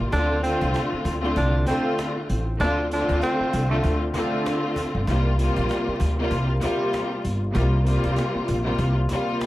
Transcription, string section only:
0.13 D3 A3 C4 F4
0.41 D3 A3 C4 F4
1.21 D3 A3 C4 F4
1.65 D3 A3 C4 F4
2.60 D3 A3 C4 F4
2.92 D3 A3 C4 F4
3.70 D3 A3 C4 F4
4.13 D3 A3 C4 F4
5.08 C3 G3 A#3 F4
5.37 C3 G3 A#3 F4
6.18 C3 G3 A#3 F4
6.60 C3 G3 A#3 F4
7.53 C3 G3 A#3 F4
7.84 C3 G3 A#3 F4
8.63 C3 G3 A#3 F4
9.10 C3 G3 A#3 F4

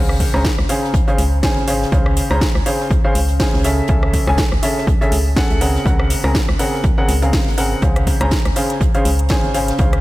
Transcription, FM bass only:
Already playing: C#2
0.34 C#2
0.59 C#2
0.94 C#2
1.18 C#2
1.57 G#1
1.92 C#2
2.31 C#2
2.55 C#2
2.91 C#2
3.15 C#2
3.54 C#2
3.89 C#2
4.27 C#2
4.52 C#2
4.87 C#2
5.12 C#2
5.50 C#2
5.86 C#2
6.24 C#2
6.49 C#2
6.84 C#2
7.09 C#2
7.47 G#1
7.82 C#2
8.21 C#2
8.45 C#2
8.81 C#2
9.05 C#2
9.44 G#1
9.79 C#2

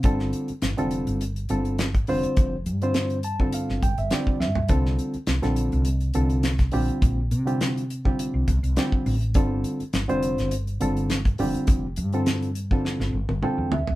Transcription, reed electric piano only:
0.04 D3 G3 C4 F4 A4
0.77 D3 G3 C4 F4 A4
1.50 D3 G3 C4 F4 A4
2.08 D3 G3 C4 F4 C5
2.82 D3 G3 C4 F4 C5
3.24 A5
3.40 D3 G3 C4 F4 A4
3.54 F5
3.83 G5
3.98 E5
4.11 D3 G3 C4 F4 G4 D5
4.40 E5
4.68 D3 G3 C4 F4 A4
5.42 D3 G3 C4 F4 A4
6.15 D3 G3 C4 F4 A4
6.72 D3 G3 C4 F4 G4
7.45 D3 G3 C4 F4 G4
8.05 D3 G3 C4 F4 G4
8.77 D3 G3 C4 F4 G4
9.35 D3 G3 C4 F4 A4
10.08 D3 G3 C4 F4 C5
10.80 D3 G3 C4 F4 A4
11.39 D3 G3 C4 F4 G4
12.13 D3 G3 C4 F4 A4
12.72 D3 G3 C4 F4 A4
13.42 D3 G3 C4 F4 A4 G5
13.73 E5

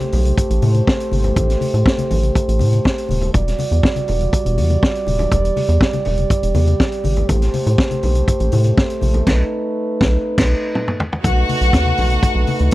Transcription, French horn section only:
Already playing: A3 G4 C5
3.33 G3 F#4 D5
5.31 G4
7.28 A3 C5
9.26 D#4 B4
11.24 A3 D#4 B4

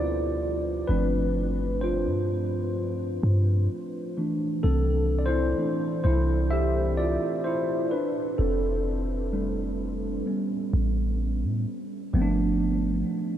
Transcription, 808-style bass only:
Already playing: D2
0.89 G1
2.06 G2
3.23 G2
4.64 C2
6.05 C2
8.39 F1
10.73 A1
11.44 A2
12.14 G1

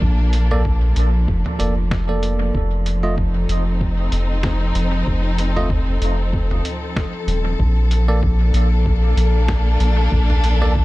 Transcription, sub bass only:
0.02 A#1
0.96 A#1
1.28 F1
1.59 F1
2.54 F1
3.48 F1
4.12 F1
4.75 F1
5.07 F1
6.01 F1
7.27 D#1
7.59 A#1
8.53 A#1
9.17 A#1
9.80 A#1
10.12 A#1

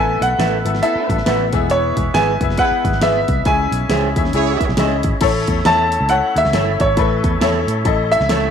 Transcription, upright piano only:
Already playing: A2 B3 E4 A4 E5
0.38 B3 E4 A4 E5
0.65 B3 E4 A4 E5
0.82 B3 E4 A4 E5
1.26 B3 E4 A4 F#5
1.53 E3 B3 E4 G#4 E5
2.14 B3 E4 G#4 E5
2.41 B3 E4 G#4 E5
2.58 B3 E4 G#4 E5
3.01 B3 E4 G#4 E5
3.45 C#3 C#4 E4 G#4 E5
3.89 C#4 E4 G#4 E5
4.16 C#4 E4 G#4 E5
4.33 C#4 E4 G#4 E5
4.77 C#4 E4 G#4 D#5
5.21 A2 E4 A4 C#5
5.65 E4 A4 C#5
6.09 E4 A4 C#5
6.53 E4 A4 C#5
6.97 A2 E4 A4 B4
7.41 E4 A4 C#5
7.85 E4 A4 D#5
8.29 E4 A4 C#5

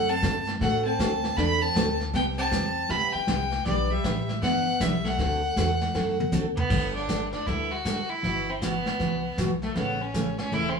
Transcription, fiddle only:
Already playing: F#5
0.10 A5
0.61 F#5
0.85 A5
1.37 B5
1.62 A5
2.15 G5
2.38 A5
2.90 B5
3.13 G5
3.66 D5
3.91 E5
4.42 F#5
4.81 E5
5.07 F#5
6.56 B3
6.95 D4
7.33 D4
7.47 E4
7.72 F#4
8.09 E4
8.49 C4
8.63 B3
9.63 A3
9.76 B3
10.01 C#4
10.39 C#4
10.54 E4
10.69 C4
10.77 C#4

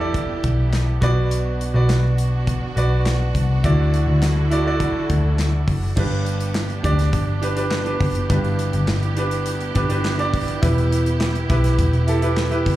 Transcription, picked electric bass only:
Already playing: E2
0.44 B1
1.02 B1
1.74 B1
2.77 B1
3.35 C2
3.64 D2
4.07 D2
5.10 D2
5.68 F#1
5.97 G1
6.84 D2
7.13 G1
8.00 F#1
8.30 G1
8.74 G1
8.88 G1
9.76 G1
10.63 E1
11.50 B1
11.79 E1
12.66 F#1

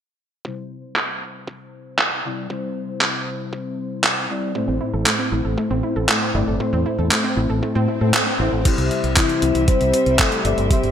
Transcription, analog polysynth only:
0.45 C3 G3 C4 E4 C5
2.24 C3 G3 C4 E4 D5
2.50 C3 G3 C4 E4 C5
4.30 G3 C4 E4 D5
4.55 A2 A3 C4 E4 C5
6.35 A2 A3 C4 E4 D5
6.60 A2 A3 C4 E4 C5
8.01 A2 A3 C4 E4 C5
8.40 A3 C4 E4 C5
8.65 C3 G3 C4 E4 C5
10.45 C3 G3 C4 E4 D5
10.70 C3 G3 C4 C5 E5

